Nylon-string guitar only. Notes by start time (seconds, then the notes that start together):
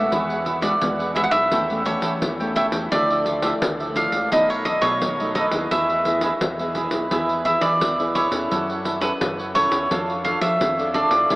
Already playing: G#3 B3 F#4
0.11 E3
0.62 G#3 B3 F#4
0.81 B2 G#3 B3 F#4
1.15 G#3 B3 F#4
1.52 E3 A3 C#4 G4
1.70 A3 C#4 G4
1.86 A3 C#4 G4
2.21 E3
2.40 A3 C#4 G4
2.92 D3 F3 A3 E4
3.42 F3 A3 E4
3.61 A2
3.95 F3 A3 E4
4.31 B2 F#3 A3 D#4
4.81 F#3 A3 D#4
5.01 F#2
5.20 F#3 A3 D#4
5.52 B3 E4 G#4
5.72 E3
6.05 B3 E4 G#4
6.41 B2
6.60 B3 E4 G#4
6.92 B3 E4 G#4
7.11 E3 B3 E4 G#4
7.45 B3 E4 G#4
7.80 B2
7.99 B3 E4 G#4
8.31 C#4 E4 A4
8.51 F#3
9.01 C#4 E4 A4
9.21 C#3
9.55 C#4 E4 A4
9.91 F3 D4 F4 A4
10.25 D4 F4 A4
10.61 F3
10.78 D4 F4 A4
11.30 A3 E4 G#4